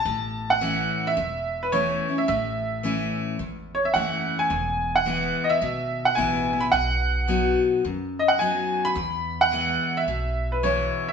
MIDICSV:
0, 0, Header, 1, 4, 480
1, 0, Start_track
1, 0, Tempo, 557103
1, 48, Time_signature, 4, 2, 24, 8
1, 9585, End_track
2, 0, Start_track
2, 0, Title_t, "Upright piano"
2, 0, Program_c, 0, 0
2, 0, Note_on_c, 0, 81, 107
2, 433, Note_on_c, 0, 78, 99
2, 455, Note_off_c, 0, 81, 0
2, 923, Note_on_c, 0, 76, 99
2, 932, Note_off_c, 0, 78, 0
2, 1402, Note_on_c, 0, 71, 85
2, 1417, Note_off_c, 0, 76, 0
2, 1484, Note_on_c, 0, 73, 95
2, 1490, Note_off_c, 0, 71, 0
2, 1879, Note_on_c, 0, 76, 85
2, 1891, Note_off_c, 0, 73, 0
2, 1952, Note_off_c, 0, 76, 0
2, 1965, Note_on_c, 0, 76, 88
2, 2719, Note_off_c, 0, 76, 0
2, 3228, Note_on_c, 0, 73, 83
2, 3319, Note_off_c, 0, 73, 0
2, 3319, Note_on_c, 0, 76, 82
2, 3391, Note_on_c, 0, 78, 84
2, 3407, Note_off_c, 0, 76, 0
2, 3783, Note_on_c, 0, 80, 92
2, 3805, Note_off_c, 0, 78, 0
2, 4270, Note_on_c, 0, 78, 95
2, 4286, Note_off_c, 0, 80, 0
2, 4688, Note_on_c, 0, 75, 81
2, 4724, Note_off_c, 0, 78, 0
2, 4736, Note_on_c, 0, 76, 96
2, 4745, Note_off_c, 0, 75, 0
2, 5193, Note_off_c, 0, 76, 0
2, 5216, Note_on_c, 0, 78, 95
2, 5301, Note_on_c, 0, 80, 99
2, 5316, Note_off_c, 0, 78, 0
2, 5691, Note_on_c, 0, 83, 100
2, 5719, Note_off_c, 0, 80, 0
2, 5734, Note_off_c, 0, 83, 0
2, 5786, Note_on_c, 0, 78, 102
2, 6550, Note_off_c, 0, 78, 0
2, 7060, Note_on_c, 0, 75, 88
2, 7137, Note_on_c, 0, 78, 95
2, 7155, Note_off_c, 0, 75, 0
2, 7227, Note_off_c, 0, 78, 0
2, 7229, Note_on_c, 0, 80, 89
2, 7624, Note_on_c, 0, 83, 115
2, 7644, Note_off_c, 0, 80, 0
2, 8109, Note_on_c, 0, 78, 104
2, 8126, Note_off_c, 0, 83, 0
2, 8591, Note_on_c, 0, 76, 97
2, 8609, Note_off_c, 0, 78, 0
2, 9064, Note_on_c, 0, 71, 78
2, 9090, Note_off_c, 0, 76, 0
2, 9160, Note_off_c, 0, 71, 0
2, 9162, Note_on_c, 0, 73, 87
2, 9550, Note_on_c, 0, 76, 85
2, 9570, Note_off_c, 0, 73, 0
2, 9585, Note_off_c, 0, 76, 0
2, 9585, End_track
3, 0, Start_track
3, 0, Title_t, "Steel-string acoustic guitar"
3, 0, Program_c, 1, 25
3, 47, Note_on_c, 1, 45, 91
3, 526, Note_on_c, 1, 52, 88
3, 529, Note_on_c, 1, 57, 84
3, 536, Note_on_c, 1, 61, 84
3, 539, Note_on_c, 1, 64, 95
3, 973, Note_off_c, 1, 45, 0
3, 989, Note_off_c, 1, 52, 0
3, 991, Note_off_c, 1, 57, 0
3, 995, Note_off_c, 1, 61, 0
3, 996, Note_off_c, 1, 64, 0
3, 1007, Note_on_c, 1, 40, 97
3, 1486, Note_on_c, 1, 52, 90
3, 1488, Note_on_c, 1, 57, 83
3, 1493, Note_on_c, 1, 61, 84
3, 1499, Note_on_c, 1, 64, 92
3, 1783, Note_off_c, 1, 52, 0
3, 1784, Note_off_c, 1, 57, 0
3, 1786, Note_off_c, 1, 61, 0
3, 1789, Note_off_c, 1, 64, 0
3, 1799, Note_on_c, 1, 64, 65
3, 1814, Note_on_c, 1, 61, 52
3, 1932, Note_off_c, 1, 40, 0
3, 1961, Note_off_c, 1, 64, 0
3, 1965, Note_on_c, 1, 45, 95
3, 1969, Note_off_c, 1, 61, 0
3, 2441, Note_on_c, 1, 52, 86
3, 2448, Note_on_c, 1, 57, 83
3, 2453, Note_on_c, 1, 61, 94
3, 2459, Note_on_c, 1, 64, 99
3, 2891, Note_off_c, 1, 45, 0
3, 2906, Note_off_c, 1, 52, 0
3, 2910, Note_off_c, 1, 57, 0
3, 2912, Note_off_c, 1, 61, 0
3, 2915, Note_off_c, 1, 64, 0
3, 2922, Note_on_c, 1, 40, 83
3, 3397, Note_on_c, 1, 52, 84
3, 3402, Note_on_c, 1, 57, 88
3, 3410, Note_on_c, 1, 61, 87
3, 3415, Note_on_c, 1, 64, 91
3, 3849, Note_off_c, 1, 40, 0
3, 3864, Note_off_c, 1, 52, 0
3, 3866, Note_off_c, 1, 57, 0
3, 3870, Note_off_c, 1, 61, 0
3, 3873, Note_off_c, 1, 64, 0
3, 3877, Note_on_c, 1, 40, 99
3, 4357, Note_on_c, 1, 52, 89
3, 4362, Note_on_c, 1, 56, 90
3, 4368, Note_on_c, 1, 59, 88
3, 4371, Note_on_c, 1, 64, 99
3, 4806, Note_off_c, 1, 40, 0
3, 4824, Note_off_c, 1, 52, 0
3, 4826, Note_off_c, 1, 56, 0
3, 4829, Note_off_c, 1, 59, 0
3, 4831, Note_off_c, 1, 64, 0
3, 4839, Note_on_c, 1, 47, 92
3, 5311, Note_on_c, 1, 52, 89
3, 5321, Note_on_c, 1, 56, 90
3, 5322, Note_on_c, 1, 59, 94
3, 5327, Note_on_c, 1, 64, 107
3, 5613, Note_off_c, 1, 64, 0
3, 5614, Note_off_c, 1, 52, 0
3, 5619, Note_off_c, 1, 56, 0
3, 5620, Note_off_c, 1, 59, 0
3, 5623, Note_on_c, 1, 64, 61
3, 5638, Note_on_c, 1, 59, 49
3, 5768, Note_off_c, 1, 47, 0
3, 5792, Note_off_c, 1, 64, 0
3, 5800, Note_off_c, 1, 59, 0
3, 6269, Note_on_c, 1, 54, 77
3, 6276, Note_on_c, 1, 59, 92
3, 6284, Note_on_c, 1, 63, 90
3, 6285, Note_on_c, 1, 66, 98
3, 6740, Note_off_c, 1, 54, 0
3, 6743, Note_off_c, 1, 59, 0
3, 6747, Note_off_c, 1, 63, 0
3, 6748, Note_off_c, 1, 66, 0
3, 6760, Note_on_c, 1, 42, 84
3, 7238, Note_on_c, 1, 54, 76
3, 7241, Note_on_c, 1, 59, 88
3, 7248, Note_on_c, 1, 63, 98
3, 7254, Note_on_c, 1, 66, 96
3, 7688, Note_off_c, 1, 42, 0
3, 7705, Note_off_c, 1, 54, 0
3, 7706, Note_off_c, 1, 59, 0
3, 7709, Note_off_c, 1, 63, 0
3, 7712, Note_off_c, 1, 66, 0
3, 7717, Note_on_c, 1, 40, 93
3, 8200, Note_on_c, 1, 52, 82
3, 8204, Note_on_c, 1, 56, 90
3, 8209, Note_on_c, 1, 59, 88
3, 8214, Note_on_c, 1, 64, 92
3, 8647, Note_off_c, 1, 40, 0
3, 8665, Note_off_c, 1, 52, 0
3, 8667, Note_off_c, 1, 56, 0
3, 8670, Note_off_c, 1, 59, 0
3, 8673, Note_off_c, 1, 64, 0
3, 8683, Note_on_c, 1, 47, 82
3, 9160, Note_on_c, 1, 52, 87
3, 9164, Note_on_c, 1, 56, 92
3, 9169, Note_on_c, 1, 59, 88
3, 9174, Note_on_c, 1, 64, 90
3, 9585, Note_off_c, 1, 47, 0
3, 9585, Note_off_c, 1, 52, 0
3, 9585, Note_off_c, 1, 56, 0
3, 9585, Note_off_c, 1, 59, 0
3, 9585, Note_off_c, 1, 64, 0
3, 9585, End_track
4, 0, Start_track
4, 0, Title_t, "Upright bass"
4, 0, Program_c, 2, 32
4, 44, Note_on_c, 2, 33, 98
4, 732, Note_off_c, 2, 33, 0
4, 1008, Note_on_c, 2, 28, 83
4, 1694, Note_off_c, 2, 28, 0
4, 1969, Note_on_c, 2, 33, 96
4, 2654, Note_off_c, 2, 33, 0
4, 2922, Note_on_c, 2, 32, 77
4, 3331, Note_off_c, 2, 32, 0
4, 3405, Note_on_c, 2, 30, 79
4, 3813, Note_off_c, 2, 30, 0
4, 3881, Note_on_c, 2, 28, 99
4, 4569, Note_off_c, 2, 28, 0
4, 4838, Note_on_c, 2, 32, 74
4, 5249, Note_off_c, 2, 32, 0
4, 5319, Note_on_c, 2, 33, 92
4, 5729, Note_off_c, 2, 33, 0
4, 5799, Note_on_c, 2, 35, 96
4, 6488, Note_off_c, 2, 35, 0
4, 6759, Note_on_c, 2, 42, 77
4, 7448, Note_off_c, 2, 42, 0
4, 7714, Note_on_c, 2, 40, 104
4, 8404, Note_off_c, 2, 40, 0
4, 8674, Note_on_c, 2, 35, 74
4, 9364, Note_off_c, 2, 35, 0
4, 9585, End_track
0, 0, End_of_file